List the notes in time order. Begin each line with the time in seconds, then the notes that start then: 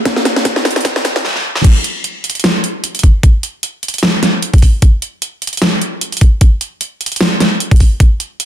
0.05 kick, snare, closed hi-hat
0.16 snare
0.25 snare, closed hi-hat
0.36 snare
0.45 kick, snare, closed hi-hat
0.56 snare
0.65 snare, closed hi-hat
0.71 closed hi-hat
0.76 snare, closed hi-hat
0.81 closed hi-hat
0.85 kick, snare, closed hi-hat
0.96 snare
1.05 snare, closed hi-hat
1.16 snare
1.25 snare
1.36 snare
1.56 snare
1.64 kick, closed hi-hat, crash
1.84 closed hi-hat
2.04 closed hi-hat
2.24 closed hi-hat
2.30 closed hi-hat
2.35 closed hi-hat
2.40 closed hi-hat
2.44 snare, closed hi-hat
2.64 closed hi-hat
2.84 closed hi-hat
2.95 closed hi-hat
2.99 closed hi-hat
3.03 kick, closed hi-hat
3.23 kick, closed hi-hat
3.43 closed hi-hat
3.63 closed hi-hat
3.83 closed hi-hat
3.88 closed hi-hat
3.94 closed hi-hat
3.98 closed hi-hat
4.03 snare, closed hi-hat
4.23 snare, closed hi-hat
4.42 closed hi-hat
4.54 kick, closed hi-hat
4.58 closed hi-hat
4.62 kick, open hi-hat
4.82 kick, closed hi-hat
5.02 closed hi-hat
5.22 closed hi-hat
5.42 closed hi-hat
5.47 closed hi-hat
5.53 closed hi-hat
5.57 closed hi-hat
5.62 snare, closed hi-hat
5.81 closed hi-hat
6.01 closed hi-hat
6.12 closed hi-hat
6.17 closed hi-hat
6.21 kick, closed hi-hat
6.41 kick, closed hi-hat
6.61 closed hi-hat
6.81 closed hi-hat
7.01 closed hi-hat
7.06 closed hi-hat
7.12 closed hi-hat
7.16 closed hi-hat
7.21 snare, closed hi-hat
7.40 snare, closed hi-hat
7.60 closed hi-hat
7.71 kick, closed hi-hat
7.76 closed hi-hat
7.80 kick, open hi-hat
8.00 kick, closed hi-hat
8.20 closed hi-hat
8.40 closed hi-hat